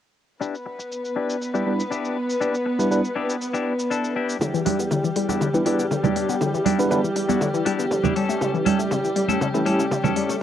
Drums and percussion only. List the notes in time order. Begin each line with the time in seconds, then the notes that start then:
0.42 shaker
0.55 shaker
0.80 shaker
0.92 shaker
1.05 shaker
1.30 shaker
1.42 shaker
1.55 shaker
1.80 shaker
1.92 shaker
2.05 shaker
2.30 shaker
2.42 shaker
2.55 shaker
2.80 shaker
2.92 shaker
3.05 shaker
3.30 shaker
3.42 shaker
3.55 shaker
3.80 shaker
3.92 shaker
4.04 shaker
4.29 shaker
4.41 mid tom, shaker
4.54 shaker
4.66 open hi-hat, high conga
4.79 shaker
4.91 mid tom, shaker
5.04 shaker
5.16 open hi-hat
5.29 high conga, shaker
5.41 mid tom, shaker
5.55 shaker
5.66 open hi-hat
5.80 shaker
5.91 mid tom, shaker
6.04 high conga, low conga, shaker
6.16 open hi-hat
6.29 shaker
6.41 mid tom, shaker
6.55 shaker
6.66 open hi-hat, high conga
6.80 shaker
6.91 mid tom, shaker
7.05 shaker
7.16 open hi-hat
7.29 high conga, shaker
7.41 mid tom, shaker
7.55 shaker
7.66 open hi-hat
7.80 shaker
7.91 mid tom, shaker
8.04 high conga, low conga, shaker
8.16 open hi-hat
8.30 shaker
8.41 mid tom, shaker
8.55 shaker
8.66 open hi-hat, high conga
8.80 shaker
8.91 mid tom, shaker
9.05 shaker
9.16 open hi-hat
9.28 high conga, shaker
9.41 mid tom, shaker
9.55 shaker
9.66 open hi-hat
9.80 shaker
9.91 mid tom, shaker
10.04 high conga, low conga, shaker
10.16 open hi-hat
10.30 shaker